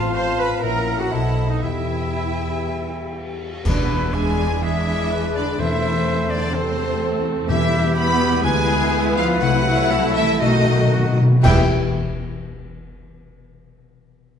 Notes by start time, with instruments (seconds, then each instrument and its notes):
Already playing: double bass section A1, harp A2 C4, french horn section C4 F4, viola section F4, cello section F4, oboe F4, violin section C5 F5, clarinet F5, flute A5
0.14 harp A4, viola section C5, cello section C5, oboe C5, violin section F5 C6, clarinet F5, flute A5
0.38 harp C4, cello section B4, viola section B4, oboe B4, violin section B5
0.62 double bass section A#1, harp A#2, french horn section C#4 E4, cello section A#4, viola section A#4, oboe A#4, clarinet E5, violin section F#5 A#5, flute A#5
0.87 harp E4 C#5
0.99 viola section F#4, oboe F#4, cello section F#4, violin section F#5
1.11 double bass section B1, harp B2, french horn section C4 A4, oboe E4, viola section E4, cello section E4, clarinet D#5, violin section E5, flute A5
1.37 harp D#4 C5
1.49 oboe D#4, cello section D#4, viola section D#4, violin section D#5
1.61 double bass section E2, harp E3, french horn section B3 G4, cello section E4, oboe E4, viola section E4, violin section E5, clarinet E5, flute G5
1.89 harp E4
2.15 harp G4
2.40 harp E4
2.65 harp G3
2.90 harp E4
3.15 harp G4
3.40 harp E4
3.64 double bass section E2, timpani E2, cello section B2, harp E3, viola section G#3 D4, violin section B3 B4, french horn section D4 G#4, oboe E4, flute B4, concert bass drum, crash
3.77 harp G#3
4.01 harp E5
4.13 viola section G#3 D4, cello section G#3, french horn section D4 G#4, violin section G#4 G#5, flute G#5, harp D6
4.38 harp E4
4.50 harp G#3
4.62 harp E3, cello section E3, viola section G#3 D4, french horn section D4 G#4, violin section E4 E5, oboe G#4, flute E5
4.75 harp E4
4.87 harp D5
5.10 oboe B4, harp D6
5.23 harp G#4
5.34 cello section D3, violin section D4 D5, harp E4, flute D5
5.47 harp G#3
5.58 timpani E2, double bass section E2, harp E3, cello section E3, viola section A3 C4, french horn section C4 A4, violin section E4 E5, oboe C5, flute E5
6.29 cello section D3, violin section D4 D5, harp E4, flute D5
6.41 harp A3
6.53 cello section C3, harp E3, viola section A3 C4, violin section C4 C5, french horn section C4 A4, oboe A4, flute C5
6.65 harp E4
6.90 harp E5
7.01 harp C6
7.13 harp A4
7.25 harp E4
7.37 harp A3
7.48 timpani E2, double bass section E2, harp E3, cello section E3, viola section G3 E4, french horn section B3 G4, violin section E4 E5, oboe G4, flute E5
7.60 harp G3
7.72 harp B4
7.84 harp E5
7.95 viola section G3 E4, cello section B3, french horn section B3 G4, violin section B4 B5, harp B5, flute B5
8.08 harp G4
8.20 harp E4, french horn section F#4
8.31 harp G3
8.43 double bass section D2, harp D3, cello section G#3, french horn section B3 E4, viola section B3 E4, violin section G#4 G#5, oboe B4, flute G#5
8.55 harp D4
8.67 harp E4
8.80 harp G#4
8.92 oboe B4, harp E5
9.05 harp B4
9.16 cello section F3, violin section F4 F5, flute F5
9.29 harp D4
9.41 double bass section C2, harp C3, cello section F#3, french horn section A3 E4, viola section A3 E4, violin section F#4 F#5, flute F#5
9.54 harp C4
9.66 harp E4
9.91 oboe A4, harp E5
10.03 harp A4
10.15 cello section E3, harp A3, violin section E4 E5, flute E5
10.41 double bass section B1, harp B2, timpani B2, cello section D#3, french horn section A3 F#4, viola section A3 F#4, violin section D#4 D#5, flute D#5
10.53 timpani B2, harp F#3
10.65 timpani B2, harp F#4
10.73 timpani B2
10.79 timpani B2, harp A4
10.89 timpani B2, oboe F#4, harp F#5
10.97 timpani B2
11.05 timpani B2, harp B4
11.13 timpani B2
11.17 harp A3
11.22 timpani B2
11.30 timpani B2, harp F#3
11.36 harp E3 B3
11.42 timpani E2, double bass section E2, cello section G3, viola section B3 E4, french horn section B3 E4, harp E4 G4, violin section G4 G5, clarinet E5, flute G5, oboe G5, concert bass drum, crash
11.48 harp B4